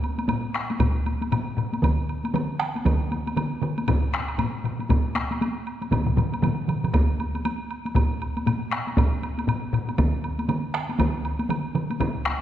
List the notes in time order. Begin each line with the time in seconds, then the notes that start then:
0.04 high woodblock
0.18 taiko high, high woodblock
0.28 taiko low-mid, taiko high, high woodblock
0.54 taiko rim, high woodblock
0.70 taiko high, high woodblock
0.80 taiko, taiko low-mid, taiko high, high woodblock
1.06 taiko high, high woodblock
1.22 taiko high, high woodblock
1.32 taiko low-mid, taiko high, high woodblock
1.58 taiko low-mid, high woodblock
1.73 taiko high, high woodblock
1.82 taiko, taiko mid, taiko high, high woodblock
2.09 high woodblock
2.24 taiko high, high woodblock
2.34 taiko mid, taiko high, high woodblock
2.59 taiko rim, high woodblock
2.75 taiko high, high woodblock
2.85 taiko, taiko mid, taiko high, high woodblock
3.11 taiko high, high woodblock
3.27 taiko high, high woodblock
3.36 taiko mid, taiko high, high woodblock
3.62 taiko mid, high woodblock
3.78 taiko high, high woodblock
3.88 taiko, taiko low-mid, taiko high, high woodblock
4.13 taiko rim, high woodblock
4.28 high woodblock
4.38 taiko low-mid, taiko high, high woodblock
4.64 taiko low-mid, high woodblock
4.80 taiko high, high woodblock
4.89 taiko, taiko low-mid, taiko high, high woodblock
5.15 taiko rim, taiko high, high woodblock
5.31 taiko high, high woodblock
5.41 taiko high, high woodblock
5.67 high woodblock
5.82 taiko high, high woodblock
5.91 taiko, taiko low-mid, taiko mid, taiko high, high woodblock
6.06 taiko low-mid, taiko mid
6.17 taiko low-mid, taiko mid, high woodblock
6.33 taiko high, high woodblock
6.43 taiko low-mid, taiko mid, taiko high, high woodblock
6.68 taiko low-mid, taiko mid, high woodblock
6.83 taiko low-mid, taiko mid, high woodblock
6.94 taiko, taiko high, high woodblock
7.19 taiko high, high woodblock
7.35 taiko high, high woodblock
7.45 taiko high, high woodblock
7.71 high woodblock
7.85 taiko high, high woodblock
7.95 taiko, taiko low-mid, taiko high, high woodblock
8.22 high woodblock
8.37 taiko high, high woodblock
8.46 taiko low-mid, taiko high, high woodblock
8.71 taiko rim, high woodblock
8.87 taiko high, high woodblock
8.97 taiko, taiko low-mid, taiko high, high woodblock
9.22 taiko high, high woodblock
9.38 taiko high, high woodblock
9.48 taiko low-mid, taiko high, high woodblock
9.73 taiko low-mid, high woodblock
9.88 taiko high, high woodblock
9.98 taiko, taiko mid, taiko high, high woodblock
10.24 high woodblock
10.39 taiko high, high woodblock
10.49 taiko mid, taiko high, high woodblock
10.74 taiko rim, high woodblock
10.89 taiko high, high woodblock
10.99 taiko, taiko mid, taiko high, high woodblock
11.25 high woodblock
11.39 taiko high, high woodblock
11.49 taiko mid, taiko high, high woodblock
11.75 taiko mid, high woodblock
11.90 taiko high, high woodblock
12.00 taiko, taiko low-mid, taiko high, high woodblock
12.25 taiko rim, high woodblock